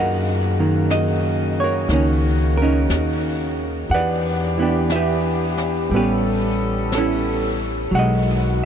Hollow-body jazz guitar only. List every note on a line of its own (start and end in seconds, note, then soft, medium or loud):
0.00 1.63 A#4 medium
0.00 0.90 D#5 medium
0.00 0.61 F#5 medium
0.60 1.89 D#3 soft
0.60 1.91 A#3 soft
0.91 1.60 D#5 medium
1.60 1.93 A#4 medium
1.60 2.57 C#5 medium
1.90 3.90 D#3 soft
1.90 2.62 A#3 soft
1.90 2.61 C#4 soft
2.58 3.85 A#4 medium
2.62 3.87 C#4 medium
2.62 3.88 D#4 medium
3.91 4.59 B4 medium
3.91 4.62 D5 medium
3.91 4.62 F#5 medium
4.58 5.90 E3 soft
4.58 4.95 B3 soft
4.62 4.95 D4 soft
4.62 4.92 G4 soft
4.92 5.89 G4 medium
4.92 5.89 B4 soft
4.92 5.94 E5 medium
5.91 7.91 G3 soft
5.91 7.94 B3 soft
5.96 6.96 C#4 soft
5.96 7.91 G4 medium
5.96 7.91 B4 medium
6.95 7.91 C#4 soft
6.95 7.92 E4 soft
6.95 7.90 A4 medium
7.91 8.65 F#3 soft
7.91 8.65 G#3 soft
7.91 8.65 F#5 medium
7.99 8.65 D#5 medium